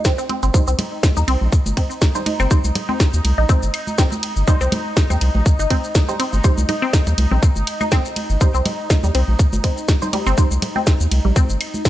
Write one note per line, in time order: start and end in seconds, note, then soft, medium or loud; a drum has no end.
0.05 0.09 C4 medium
0.05 kick loud
0.05 snare loud
0.05 shaker medium
0.18 0.21 C4 medium
0.18 shaker soft
0.29 0.34 C4 medium
0.29 closed hi-hat medium
0.29 high conga soft
0.43 0.50 G1 medium
0.43 0.47 C4 medium
0.43 closed hi-hat soft
0.43 shaker soft
0.54 0.62 G3 medium
0.54 11.89 D#4 medium
0.54 0.62 D#4 medium
0.54 0.62 C5 loud
0.54 kick loud
0.54 shaker medium
0.68 0.74 C2 loud
0.68 0.71 C4 medium
0.68 shaker soft
0.79 closed hi-hat loud
0.79 ride medium
0.79 high conga soft
0.79 low conga loud
1.03 kick loud
1.03 snare loud
1.03 high conga medium
1.03 claves medium
1.03 shaker medium
1.17 1.24 D#2 medium
1.17 1.22 D#4 medium
1.17 low conga medium
1.17 shaker soft
1.28 1.36 C2 medium
1.28 1.32 C4 loud
1.28 closed hi-hat medium
1.28 ride medium
1.41 1.48 A#1 loud
1.41 high conga soft
1.52 kick loud
1.52 shaker medium
1.66 1.73 G1 loud
1.66 high conga medium
1.66 shaker soft
1.77 1.81 C4 medium
1.77 kick medium
1.77 closed hi-hat medium
1.77 ride medium
1.91 shaker soft
2.02 kick loud
2.02 snare loud
2.02 high conga soft
2.02 shaker medium
2.15 2.21 G3 loud
2.15 2.21 D#4 medium
2.15 2.21 C5 loud
2.15 shaker soft
2.26 2.33 D#4 medium
2.26 closed hi-hat medium
2.26 ride medium
2.26 high conga medium
2.40 2.47 G1 medium
2.40 2.43 C4 loud
2.40 claves medium
2.40 shaker soft
2.51 2.58 G3 medium
2.51 2.58 D#4 medium
2.51 2.58 C5 loud
2.51 kick loud
2.51 shaker medium
2.64 2.71 C2 loud
2.64 high conga soft
2.64 shaker soft
2.75 closed hi-hat loud
2.75 ride medium
2.75 low conga medium
2.89 2.93 C4 medium
2.89 high conga medium
3.00 kick loud
3.00 snare medium
3.00 shaker medium
3.14 3.20 D#2 medium
3.14 shaker soft
3.25 3.33 C2 medium
3.25 closed hi-hat loud
3.25 ride medium
3.25 high conga soft
3.38 3.45 A#1 loud
3.38 3.44 D#4 medium
3.49 3.54 C4 loud
3.49 kick loud
3.49 high conga medium
3.49 shaker medium
3.63 3.70 G1 loud
3.63 shaker soft
3.74 closed hi-hat medium
3.74 ride medium
3.74 claves medium
3.87 high conga medium
3.87 shaker soft
3.98 4.03 C4 medium
3.98 kick loud
3.98 snare loud
3.98 shaker medium
4.12 high conga medium
4.12 shaker soft
4.23 closed hi-hat medium
4.23 ride medium
4.36 4.43 G1 medium
4.36 shaker soft
4.47 4.55 G3 loud
4.47 4.54 D#4 medium
4.47 4.55 D#4 medium
4.47 4.55 C5 loud
4.47 kick loud
4.47 high conga soft
4.47 shaker medium
4.61 4.68 C2 loud
4.61 4.65 C4 loud
4.61 shaker soft
4.72 closed hi-hat loud
4.72 ride medium
4.72 high conga medium
4.72 low conga loud
4.97 kick loud
4.97 snare loud
4.97 shaker medium
5.10 5.17 D#2 medium
5.10 5.14 C4 medium
5.10 high conga soft
5.10 low conga medium
5.10 claves medium
5.10 shaker soft
5.21 5.30 C2 medium
5.21 closed hi-hat loud
5.21 ride medium
5.35 5.42 A#1 loud
5.35 high conga medium
5.46 kick loud
5.46 shaker medium
5.59 5.66 G1 loud
5.59 5.65 D#4 medium
5.59 shaker soft
5.70 5.75 C4 loud
5.70 kick medium
5.70 closed hi-hat medium
5.70 ride medium
5.70 high conga medium
5.84 shaker soft
5.95 kick loud
5.95 snare loud
5.95 high conga medium
5.95 shaker medium
6.09 6.15 G3 loud
6.09 6.15 D#4 medium
6.09 6.15 C5 loud
6.09 shaker soft
6.20 6.24 C4 medium
6.20 closed hi-hat loud
6.20 ride medium
6.33 6.40 G1 medium
6.33 high conga soft
6.33 shaker soft
6.44 6.52 G3 medium
6.44 6.52 D#4 medium
6.44 6.52 C5 loud
6.44 kick loud
6.44 claves medium
6.44 shaker medium
6.58 6.65 C2 loud
6.58 high conga medium
6.58 shaker soft
6.69 6.75 D#4 medium
6.69 closed hi-hat loud
6.69 ride medium
6.69 low conga loud
6.82 6.86 C4 loud
6.93 kick loud
6.93 snare medium
6.93 high conga medium
6.93 shaker medium
7.07 7.14 D#2 medium
7.07 closed hi-hat soft
7.07 low conga medium
7.07 shaker soft
7.18 7.26 C2 medium
7.18 closed hi-hat medium
7.18 ride medium
7.18 high conga medium
7.31 7.38 A#1 loud
7.31 7.35 C4 medium
7.31 low conga medium
7.43 kick loud
7.43 shaker medium
7.56 7.63 G1 loud
7.56 high conga soft
7.56 shaker soft
7.67 closed hi-hat loud
7.67 ride medium
7.81 7.86 D#4 medium
7.81 high conga medium
7.81 claves medium
7.81 shaker soft
7.92 7.96 C4 loud
7.92 kick loud
7.92 snare medium
7.92 shaker medium
8.05 shaker soft
8.16 closed hi-hat loud
8.16 ride medium
8.16 high conga soft
8.30 8.37 G1 medium
8.30 shaker soft
8.41 8.49 G3 medium
8.41 8.49 D#4 medium
8.41 8.49 C5 loud
8.41 kick loud
8.41 shaker medium
8.54 8.61 C2 loud
8.54 8.58 C4 medium
8.54 shaker soft
8.65 closed hi-hat medium
8.65 ride medium
8.65 high conga soft
8.65 low conga medium
8.90 kick loud
8.90 snare medium
8.90 high conga medium
8.90 claves medium
8.90 shaker medium
9.04 9.10 D#2 medium
9.04 9.06 G3 medium
9.04 low conga medium
9.04 shaker soft
9.15 9.23 C2 medium
9.15 9.19 C4 loud
9.15 closed hi-hat loud
9.15 ride medium
9.28 9.35 A#1 loud
9.28 high conga soft
9.39 kick loud
9.39 shaker medium
9.53 9.60 G1 loud
9.53 high conga medium
9.53 shaker soft
9.64 9.68 C4 medium
9.64 kick medium
9.64 closed hi-hat medium
9.64 ride medium
9.77 shaker soft
9.88 kick loud
9.88 snare medium
9.88 high conga soft
9.88 shaker medium
10.02 10.08 G3 loud
10.02 10.08 D#4 medium
10.02 10.08 C5 loud
10.02 shaker soft
10.13 10.16 G3 medium
10.13 closed hi-hat medium
10.13 ride medium
10.13 high conga medium
10.27 10.33 G1 medium
10.27 10.30 C4 loud
10.27 claves medium
10.27 shaker soft
10.38 10.45 G3 medium
10.38 10.45 D#4 medium
10.38 10.45 C5 loud
10.38 kick loud
10.38 shaker medium
10.51 10.58 C2 medium
10.51 high conga soft
10.51 shaker soft
10.62 closed hi-hat medium
10.62 ride medium
10.62 low conga medium
10.76 10.79 C4 medium
10.76 high conga medium
10.87 kick loud
10.87 snare medium
10.87 shaker medium
11.00 11.07 D#2 medium
11.00 shaker soft
11.11 11.20 C2 medium
11.11 closed hi-hat medium
11.11 ride medium
11.11 high conga soft
11.25 11.32 A#1 loud
11.25 11.27 G3 medium
11.36 11.40 C4 loud
11.36 kick loud
11.36 high conga medium
11.36 shaker medium
11.50 11.56 G1 loud
11.50 shaker soft
11.61 closed hi-hat medium
11.61 ride medium
11.61 claves medium
11.74 high conga soft
11.74 shaker soft
11.85 11.89 C4 medium
11.85 kick loud
11.85 snare medium
11.85 shaker medium